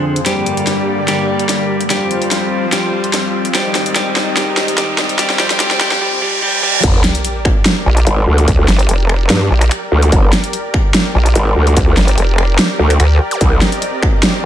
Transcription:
0.00 0.24 F2 medium
0.00 0.18 D3 medium
0.00 0.24 F3 medium
0.00 0.22 C4 medium
0.00 0.18 D4 medium
0.00 0.22 G#4 medium
0.00 0.24 C5 medium
0.16 closed hi-hat medium
0.26 1.89 G2 medium
0.26 1.89 D3 medium
0.26 1.00 G3 medium
0.26 1.89 A#3 medium
0.26 1.89 G4 medium
0.26 1.00 G4 medium
0.26 1.89 D5 medium
0.26 snare soft
0.26 closed hi-hat medium
0.26 riser medium
0.46 closed hi-hat soft
0.57 closed hi-hat soft
0.67 snare soft
0.67 closed hi-hat medium
1.08 1.83 G3 medium
1.08 1.83 G4 medium
1.08 snare medium
1.08 closed hi-hat medium
1.39 closed hi-hat soft
1.49 snare medium
1.49 closed hi-hat medium
1.81 closed hi-hat medium
1.90 3.53 F2 medium
1.90 3.53 F3 medium
1.90 2.65 G3 medium
1.90 5.16 C4 medium
1.90 3.53 F4 medium
1.90 2.65 G4 medium
1.90 3.53 C5 medium
1.90 snare medium
1.90 closed hi-hat medium
2.11 closed hi-hat soft
2.22 closed hi-hat soft
2.31 snare medium
2.31 closed hi-hat medium
2.72 3.47 G3 medium
2.72 3.47 G4 medium
2.72 snare medium
2.72 closed hi-hat medium
3.04 closed hi-hat soft
3.13 snare medium
3.13 closed hi-hat medium
3.45 closed hi-hat soft
3.55 5.17 G#2 medium
3.55 5.17 D#3 medium
3.55 3.94 G3 medium
3.55 5.99 D#4 medium
3.55 3.94 G4 medium
3.55 5.17 D#5 medium
3.55 snare medium
3.55 closed hi-hat medium
3.75 snare medium
3.75 closed hi-hat medium
3.86 closed hi-hat medium
3.95 4.35 G3 medium
3.95 4.35 G4 medium
3.95 snare medium
3.95 closed hi-hat medium
4.16 snare medium
4.37 4.76 G3 medium
4.37 4.76 G4 medium
4.37 snare medium
4.37 closed hi-hat medium
4.57 snare medium
4.68 closed hi-hat medium
4.78 5.17 G3 medium
4.78 5.17 G4 loud
4.78 snare medium
4.78 closed hi-hat medium
4.98 snare medium
5.09 closed hi-hat medium
5.19 6.00 F2 medium
5.19 6.00 F3 medium
5.19 5.38 G3 medium
5.19 6.00 C4 medium
5.19 5.38 G4 medium
5.19 6.00 C5 medium
5.19 snare medium
5.19 closed hi-hat medium
5.30 snare medium
5.39 5.58 G3 medium
5.39 5.59 G4 medium
5.39 snare medium
5.39 closed hi-hat medium
5.50 snare medium
5.50 closed hi-hat medium
5.60 5.79 G3 medium
5.60 5.79 G4 medium
5.60 snare loud
5.60 closed hi-hat medium
5.71 snare medium
5.80 6.00 G3 medium
5.80 6.00 G4 medium
5.80 snare loud
5.92 snare medium
6.01 6.20 G3 medium
6.01 6.20 G4 medium
6.01 reverse cymbal medium
6.22 6.41 G3 medium
6.22 6.41 G4 medium
6.42 6.61 G3 medium
6.42 6.61 G4 medium
6.63 6.82 G3 medium
6.63 6.82 G4 medium
6.83 7.02 G1 loud
6.83 14.45 G4 medium
6.83 14.45 A#4 medium
6.83 14.45 D5 medium
6.83 kick loud
6.83 closed hi-hat medium
6.83 crash loud
6.83 sub drop medium
7.04 snare medium
7.04 closed hi-hat medium
7.15 closed hi-hat medium
7.25 closed hi-hat medium
7.45 finger snap medium
7.45 kick loud
7.66 snare loud
7.66 closed hi-hat medium
7.86 8.05 A#1 loud
7.97 closed hi-hat medium
8.07 8.26 G#1 loud
8.07 closed hi-hat medium
8.27 8.46 D2 loud
8.38 closed hi-hat medium
8.48 8.57 D2 medium
8.48 kick loud
8.48 closed hi-hat medium
8.59 8.67 D2 loud
8.68 8.87 G1 loud
8.68 snare medium
8.68 closed hi-hat medium
8.79 closed hi-hat medium
8.89 9.28 F1 medium
8.89 closed hi-hat medium
9.09 finger snap medium
9.30 9.49 G2 loud
9.30 snare loud
9.30 closed hi-hat medium
9.51 9.70 A#1 loud
9.61 finger snap medium
9.61 closed hi-hat medium
9.71 finger snap medium
9.71 closed hi-hat medium
9.92 10.11 D2 loud
10.02 closed hi-hat medium
10.12 10.31 G1 loud
10.12 kick loud
10.12 closed hi-hat medium
10.33 snare medium
10.33 closed hi-hat medium
10.44 closed hi-hat medium
10.53 closed hi-hat medium
10.74 finger snap medium
10.74 kick loud
10.94 snare loud
10.94 closed hi-hat medium
11.15 11.34 A#1 loud
11.26 closed hi-hat medium
11.35 11.55 G#1 loud
11.35 closed hi-hat medium
11.56 11.75 D2 medium
11.67 closed hi-hat medium
11.77 11.86 D2 loud
11.77 kick loud
11.77 closed hi-hat medium
11.87 11.96 D2 loud
11.97 12.16 G1 loud
11.97 snare medium
11.97 closed hi-hat medium
12.08 closed hi-hat medium
12.18 12.57 F1 loud
12.18 closed hi-hat medium
12.38 finger snap medium
12.59 snare loud
12.59 closed hi-hat medium
12.79 12.98 D2 loud
12.90 finger snap soft
12.90 closed hi-hat medium
13.00 13.19 D2 loud
13.00 finger snap medium
13.00 closed hi-hat medium
13.31 closed hi-hat medium
13.31 zap medium
13.41 13.60 C2 loud
13.41 14.45 C4 medium
13.41 14.45 D#5 medium
13.41 kick loud
13.41 closed hi-hat medium
13.61 snare medium
13.61 closed hi-hat medium
13.72 closed hi-hat medium
13.82 closed hi-hat medium
14.03 finger snap medium
14.03 kick loud
14.23 snare loud
14.23 closed hi-hat medium

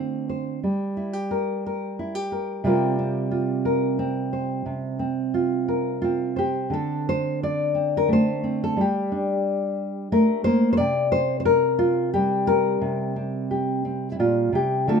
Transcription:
0.00 0.61 D3 medium
0.00 0.58 A3 soft
0.00 0.63 C4 soft
0.00 0.58 F4 soft
0.00 0.28 C5 medium
0.29 0.59 C5 medium
0.63 2.64 G3 medium
0.97 1.13 E4 soft
1.13 1.97 G4 soft
1.31 1.66 A#4 medium
1.66 2.32 A#4 medium
1.99 2.15 E4 soft
2.15 2.64 G4 soft
2.32 2.66 A#4 soft
2.64 4.62 C3 medium
2.64 6.73 G3 medium
2.64 2.98 C4 soft
2.64 3.31 F4 medium
2.64 3.65 A#4 medium
2.99 3.98 C4 soft
3.31 5.34 F4 medium
3.65 4.32 A#4 medium
3.99 4.98 C4 soft
4.33 5.68 C5 soft
4.66 6.68 C3 medium
4.99 6.02 C4 soft
5.34 6.00 F4 medium
5.68 6.36 A#4 soft
6.02 7.73 C4 soft
6.02 6.37 F4 medium
6.36 6.73 G4 medium
6.36 6.67 C5 soft
6.70 8.77 D3 medium
6.70 7.07 A4 medium
7.09 7.42 C5 medium
7.43 7.94 D5 medium
7.75 8.42 C4 soft
7.97 8.12 A#4 medium
8.08 8.73 A3 medium
8.13 8.62 C5 medium
8.44 8.78 C4 soft
8.64 8.79 A4 medium
8.77 10.12 G3 medium
8.81 10.48 G4 medium
9.12 10.76 D4 soft
10.12 10.46 A3 medium
10.12 10.44 A#4 medium
10.44 10.80 A#3 medium
10.44 10.71 C5 medium
10.73 10.77 C5 medium
10.77 12.79 C3 medium
10.77 11.11 D5 loud
11.12 11.39 C5 loud
11.40 11.45 C5 medium
11.45 12.46 A#4 medium
11.79 12.13 F4 medium
12.14 14.88 G3 medium
12.14 13.16 G4 medium
12.47 14.82 A#4 loud
12.81 14.19 C3 medium
13.16 13.84 C4 soft
13.51 14.11 G4 soft
13.85 14.88 C4 soft
14.12 14.19 E4 medium
14.19 14.52 A#2 medium
14.19 14.54 F4 medium
14.52 14.88 C3 medium
14.52 14.90 G4 medium
14.87 15.00 D3 medium
14.87 15.00 A3 soft
14.87 15.00 C4 soft
14.87 15.00 F4 soft
14.87 15.00 A4 medium

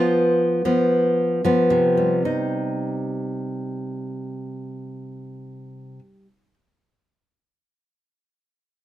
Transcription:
0.00 0.64 F3 soft
0.00 0.64 B3 soft
0.00 0.61 F4 medium
0.65 1.43 F3 soft
0.65 1.44 B3 soft
1.45 2.22 F3 soft
1.45 2.22 B3 soft
1.70 5.99 C3 soft
1.97 6.26 G3 soft
2.25 6.54 D#4 soft

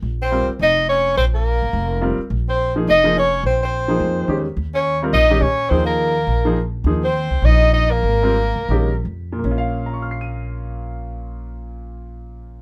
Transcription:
0.02 0.45 A#1 medium
0.22 0.48 C4 medium
0.22 0.49 C5 medium
0.31 0.47 G3 medium
0.31 0.47 C4 soft
0.31 0.47 F4 soft
0.31 0.48 A#4 medium
0.48 muted upright bass stroke soft
0.59 1.14 F1 medium
0.59 0.88 D#4 medium
0.59 0.88 D#5 medium
0.89 1.16 C#4 medium
0.89 1.15 C#5 medium
1.17 1.59 A#1 medium
1.17 1.25 C4 medium
1.17 1.25 C5 medium
1.34 2.16 A#3 medium
1.34 2.15 A#4 medium
1.62 1.73 G#1 medium
1.73 2.16 F1 medium
2.01 2.17 G3 medium
2.01 2.17 C4 medium
2.01 2.17 F4 medium
2.01 2.18 A#4 medium
2.18 muted upright bass stroke soft
2.30 2.84 A#1 medium
2.49 2.75 C4 medium
2.49 2.75 C5 medium
2.76 2.86 F3 medium
2.76 2.86 A#3 medium
2.76 2.87 D#4 medium
2.76 2.87 G#4 medium
2.87 3.41 F1 medium
2.87 3.15 D#4 medium
2.87 3.15 D#5 loud
3.04 3.15 F3 medium
3.04 3.15 A#3 medium
3.04 3.15 D#4 medium
3.04 3.15 G#4 medium
3.17 3.43 C#4 medium
3.17 3.44 C#5 medium
3.43 3.98 A#1 medium
3.43 3.61 C4 medium
3.43 3.61 C5 medium
3.63 4.43 C4 medium
3.63 4.44 C5 medium
3.88 4.27 F3 medium
3.88 4.27 A#3 medium
3.88 4.27 D#4 medium
3.88 4.27 G#4 medium
4.00 4.27 F2 medium
4.28 4.55 E2 medium
4.28 4.44 D#3 medium
4.28 4.44 G#3 soft
4.28 4.44 C#4 medium
4.28 4.45 G4 medium
4.57 5.11 D#2 medium
4.74 5.01 C#4 medium
4.74 5.02 C#5 medium
5.02 5.13 G3 medium
5.02 5.13 C4 medium
5.02 5.14 F4 medium
5.02 5.14 A#4 medium
5.13 5.40 A#1 medium
5.13 5.42 D#4 medium
5.13 5.44 D#5 medium
5.30 5.41 D#3 medium
5.30 5.42 G#3 soft
5.30 5.42 C#4 medium
5.30 5.42 G4 medium
5.41 5.69 A#2 medium
5.41 5.71 C#4 medium
5.41 5.72 C#5 medium
5.69 6.25 D#2 medium
5.69 6.13 F3 medium
5.69 6.13 A#3 soft
5.69 5.84 C4 medium
5.69 6.13 D#4 soft
5.69 6.14 G#4 medium
5.69 5.86 C5 medium
5.85 6.68 A#3 medium
5.85 6.69 A#4 medium
6.27 6.82 A#1 medium
6.45 6.55 F3 medium
6.45 6.56 A#3 medium
6.45 6.56 D#4 medium
6.45 6.56 G#4 medium
6.84 7.27 D#2 medium
6.84 7.01 F3 medium
6.84 7.01 A#3 soft
6.84 7.01 D#4 medium
6.84 7.01 G#4 medium
7.04 7.46 C4 medium
7.04 7.47 C5 medium
7.30 7.42 C#2 medium
7.42 8.00 A#1 medium
7.42 7.72 D#4 medium
7.42 7.73 D#5 medium
7.73 7.94 D#4 medium
7.73 7.92 D#5 medium
7.90 9.07 A#3 medium
7.90 9.06 A#4 medium
8.03 8.52 G#1 medium
8.23 8.34 G3 medium
8.23 8.35 C4 medium
8.23 8.35 F4 soft
8.23 8.35 A#4 medium
8.56 8.68 C#2 medium
8.68 9.03 A#1 medium
8.68 8.89 D#3 soft
8.68 8.89 G#3 soft
8.68 8.89 C#4 soft
8.68 8.89 G4 medium
9.05 9.42 F2 medium
9.32 12.62 A#2 medium
9.39 12.62 A#3 medium
9.44 12.62 A#1 medium
9.44 12.62 C#4 medium
9.51 12.62 F4 medium
9.58 12.62 F5 medium
9.86 12.62 A#5 soft
9.94 12.62 C#6 soft
10.02 12.62 F6 soft
10.11 12.62 C7 soft
10.21 12.62 D#7 soft

